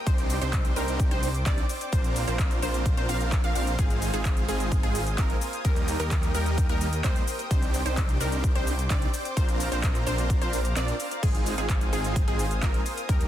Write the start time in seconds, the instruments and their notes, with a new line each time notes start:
Already playing: supersaw synth G5
0.07 detuned saw bass C2, supersaw synth C4 D4 D#4 G4 C5 D6, synth pluck C5, kick, closed hi-hat, shaker
0.18 closed hi-hat, shaker
0.30 open hi-hat, shaker
0.41 detuned saw bass C2, supersaw synth C4 D4 D#4 G4 C5, synth pluck C5, closed hi-hat, shaker
0.53 kick, clap, closed hi-hat, shaker
0.65 closed hi-hat, shaker
0.76 detuned saw bass C2, supersaw synth C4 D4 D#4 G4 A#4, synth pluck A#4, open hi-hat, shaker
0.88 closed hi-hat, shaker
1.00 kick, closed hi-hat, shaker
1.11 detuned saw bass C2, supersaw synth C4 D4 D#4 G4 C5, synth pluck C5, closed hi-hat
1.23 open hi-hat, shaker
1.35 closed hi-hat, shaker
1.46 detuned saw bass C2, supersaw synth C4 D4 D#4 G4 D5, synth pluck D5, kick, clap, closed hi-hat, shaker
1.58 closed hi-hat
1.69 open hi-hat, shaker
1.81 closed hi-hat, shaker
1.93 detuned saw bass A#1, supersaw synth C4 D4 F4 A#4 C5 F5 A#5, synth pluck C5, kick, closed hi-hat, shaker
2.04 closed hi-hat, shaker
2.16 open hi-hat, shaker
2.27 detuned saw bass A#1, supersaw synth C4 D4 F4 A#4 C5, synth pluck C5, closed hi-hat, shaker
2.39 kick, clap, closed hi-hat, shaker
2.51 clap, closed hi-hat, shaker
2.62 detuned saw bass A#1, supersaw synth C4 D4 F4 A#4 C5, synth pluck C5, open hi-hat, shaker
2.74 closed hi-hat, shaker
2.86 kick, closed hi-hat, shaker
2.97 detuned saw bass A#1, supersaw synth C4 D4 F4 A#4 C5, synth pluck C5, closed hi-hat
3.09 detuned saw bass A#1, supersaw synth C4 D4 F4 A#4 F5, synth pluck F5, open hi-hat, shaker
3.21 closed hi-hat, shaker
3.32 kick, clap, closed hi-hat, shaker
3.44 detuned saw bass A#1, supersaw synth C4 D4 F4 A#4 F5, synth pluck F5, closed hi-hat, shaker
3.55 detuned saw bass A#1, supersaw synth C4 D4 F4 A#4 F5, synth pluck F5, open hi-hat, shaker
3.67 closed hi-hat, shaker
3.79 detuned saw bass G#1, supersaw synth G#3 C4 D#4 F4 G#4 G#5 D#6, synth pluck G#4, kick, closed hi-hat, shaker
3.90 closed hi-hat, shaker
4.02 open hi-hat, shaker
4.14 detuned saw bass G#1, supersaw synth G#3 C4 D#4 F4 G#4, synth pluck G#4, closed hi-hat, shaker
4.25 kick, clap, closed hi-hat, shaker
4.37 closed hi-hat, shaker
4.48 detuned saw bass G#1, supersaw synth G#3 C4 D#4 F4 G#4, synth pluck G#4, open hi-hat, shaker
4.60 closed hi-hat, shaker
4.72 kick, closed hi-hat, shaker
4.83 detuned saw bass G#1, supersaw synth G#3 C4 D#4 F4 G#4, synth pluck G#4, closed hi-hat
4.95 open hi-hat, shaker
5.07 closed hi-hat, shaker
5.18 detuned saw bass G#1, supersaw synth G#3 C4 D#4 F4 A#4, synth pluck A#4, kick, clap, closed hi-hat, shaker
5.30 closed hi-hat
5.41 open hi-hat, shaker
5.53 closed hi-hat, shaker
5.65 detuned saw bass D#2, supersaw synth G3 A#3 D#4 G4 A#4 G5, synth pluck A#4, kick, closed hi-hat, shaker
5.76 closed hi-hat, shaker
5.88 open hi-hat, shaker
6.00 detuned saw bass D#2, supersaw synth G3 A#3 D#4 G4 A#4, synth pluck A#4, closed hi-hat, shaker
6.11 kick, clap, closed hi-hat, shaker
6.23 clap, closed hi-hat, shaker
6.34 detuned saw bass D#2, supersaw synth G3 A#3 D#4 G4 A#4, synth pluck A#4, open hi-hat, shaker
6.46 closed hi-hat, shaker
6.58 kick, closed hi-hat, shaker
6.69 detuned saw bass D#2, supersaw synth G3 A#3 D#4 G4 A#4, synth pluck A#4, closed hi-hat
6.81 open hi-hat, shaker
6.93 closed hi-hat, shaker
7.04 detuned saw bass D#2, supersaw synth G3 A#3 D#4 G4 C5, synth pluck C5, kick, clap, closed hi-hat, shaker
7.16 closed hi-hat, shaker
7.28 open hi-hat, shaker
7.39 closed hi-hat, shaker
7.51 detuned saw bass C2, supersaw synth C4 D4 D#4 G4 C5 D6, synth pluck C5, kick, closed hi-hat, shaker
7.62 closed hi-hat, shaker
7.74 open hi-hat, shaker
7.86 detuned saw bass C2, supersaw synth C4 D4 D#4 G4 C5, synth pluck C5, closed hi-hat, shaker
7.97 kick, clap, closed hi-hat, shaker
8.09 closed hi-hat, shaker
8.21 detuned saw bass C2, supersaw synth C4 D4 D#4 G4 A#4, synth pluck A#4, open hi-hat, shaker
8.32 closed hi-hat, shaker
8.44 kick, closed hi-hat, shaker
8.55 detuned saw bass C2, supersaw synth C4 D4 D#4 G4 C5, synth pluck C5, closed hi-hat
8.67 open hi-hat, shaker
8.79 closed hi-hat, shaker
8.90 detuned saw bass C2, supersaw synth C4 D4 D#4 G4 D5, synth pluck D5, kick, clap, closed hi-hat, shaker
9.02 closed hi-hat
9.14 open hi-hat, shaker
9.25 closed hi-hat, shaker
9.37 detuned saw bass A#1, supersaw synth C4 D4 F4 A#4 C5 F5 A#5, synth pluck C5, kick, closed hi-hat, shaker
9.49 closed hi-hat, shaker
9.60 open hi-hat, shaker
9.72 detuned saw bass A#1, supersaw synth C4 D4 F4 A#4 C5, synth pluck C5, closed hi-hat, shaker
9.83 kick, clap, closed hi-hat, shaker
9.95 clap, closed hi-hat, shaker
10.07 detuned saw bass A#1, supersaw synth C4 D4 F4 A#4 C5, synth pluck C5, open hi-hat, shaker
10.18 closed hi-hat, shaker
10.30 kick, closed hi-hat, shaker
10.42 detuned saw bass A#1, supersaw synth C4 D4 F4 A#4 C5, synth pluck C5, closed hi-hat, shaker
10.53 open hi-hat, shaker
10.65 closed hi-hat, shaker
10.76 detuned saw bass A#1, supersaw synth C4 D4 F4 A#4 D5, synth pluck D5, clap, closed hi-hat, shaker
10.88 closed hi-hat, shaker
11.00 open hi-hat, shaker
11.11 closed hi-hat, shaker
11.23 detuned saw bass G#1, supersaw synth G#3 C4 D#4 F4 G#4 C5 G#5 D#6, synth pluck G#4, kick, closed hi-hat, crash, shaker
11.35 closed hi-hat, shaker
11.46 open hi-hat, shaker
11.58 detuned saw bass G#1, supersaw synth G#3 C4 D#4 F4 G#4, synth pluck G#4, closed hi-hat, shaker
11.69 kick, clap, closed hi-hat, shaker
11.81 closed hi-hat, shaker
11.93 detuned saw bass G#1, supersaw synth G#3 C4 D#4 F4 G#4, synth pluck G#4, open hi-hat, shaker
12.04 closed hi-hat, shaker
12.16 kick, closed hi-hat, shaker
12.28 detuned saw bass G#1, supersaw synth G#3 C4 D#4 F4 G#4, synth pluck G#4, closed hi-hat
12.39 open hi-hat, shaker
12.51 closed hi-hat, shaker
12.62 detuned saw bass G#1, supersaw synth G#3 C4 D#4 F4 A#4, synth pluck A#4, kick, clap, closed hi-hat, shaker
12.74 closed hi-hat
12.86 open hi-hat, shaker
12.97 closed hi-hat, shaker
13.09 detuned saw bass D#2, supersaw synth G3 A#3 D#4 G4 A#4 D#5 G5, synth pluck A#4, kick, closed hi-hat, shaker
13.21 closed hi-hat, shaker